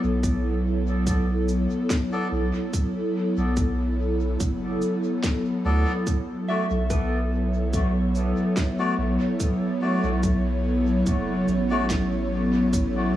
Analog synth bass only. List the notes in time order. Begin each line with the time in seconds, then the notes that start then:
0.04 B1
2.32 B1
3.37 B1
4.40 F#1
5.65 D2
6.71 B1
8.98 B1
10.04 B1
11.07 F#1
11.48 A1